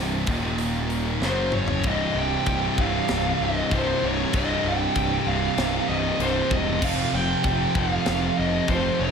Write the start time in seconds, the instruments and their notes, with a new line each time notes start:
Already playing: picked electric bass C1, distorted electric guitar C2 G2 C3
0.27 picked electric bass D#1, distorted electric guitar D#2 A#2 D#3, kick, open hi-hat
0.58 open hi-hat
0.90 open hi-hat
1.20 picked electric bass F#1, distorted electric guitar F#2 C#3 F#3, snare
1.25 lead electric guitar C5
1.52 lead electric guitar C#5, mid tom
1.68 floor tom
1.83 picked electric bass C1, distorted electric guitar C2 G2, kick, china
1.87 distorted electric guitar G2 C3, lead electric guitar D#5
2.14 picked electric bass C1
2.18 lead electric guitar G5
2.46 picked electric bass C1, kick, china
2.77 picked electric bass C1, distorted electric guitar G2 C3, lead electric guitar F5, kick
2.82 distorted electric guitar C2
3.08 picked electric bass C1, snare, china
3.40 picked electric bass C1, lead electric guitar D#5
3.71 picked electric bass C1, distorted electric guitar C2 G2, lead electric guitar C5, kick, china
3.76 distorted electric guitar C3
4.02 picked electric bass C1, distorted electric guitar C2 G2 C3
4.07 lead electric guitar C#5
4.33 picked electric bass C1, distorted electric guitar C2 G2 C3, lead electric guitar D#5, kick, china
4.64 picked electric bass C1
4.69 lead electric guitar G5
4.95 picked electric bass C1, kick, china
5.25 picked electric bass C1, distorted electric guitar G2 C3, lead electric guitar F5
5.29 distorted electric guitar C2
5.57 picked electric bass C1, snare, china
5.87 picked electric bass C1, lead electric guitar D#5
6.19 picked electric bass C1, distorted electric guitar C2 G2 C3, lead electric guitar C5, china
6.50 picked electric bass E1, distorted electric guitar C2 G2 C3, lead electric guitar D#5, kick
6.81 picked electric bass F1, distorted electric guitar F2 C3 F3, lead electric guitar F5, kick, crash, china
6.87 distorted electric guitar F3
7.13 picked electric bass F1, lead electric guitar G5
7.44 picked electric bass F1, kick, china
7.75 picked electric bass F1, distorted electric guitar C3 F3, lead electric guitar F5, kick
7.80 distorted electric guitar F2
8.06 picked electric bass F1, snare, china
8.38 picked electric bass F1, lead electric guitar D#5
8.68 picked electric bass F1, distorted electric guitar F2 C3, lead electric guitar C5, kick, china
8.72 distorted electric guitar F3
8.99 picked electric bass F1, distorted electric guitar F2 C3 F3, lead electric guitar C#5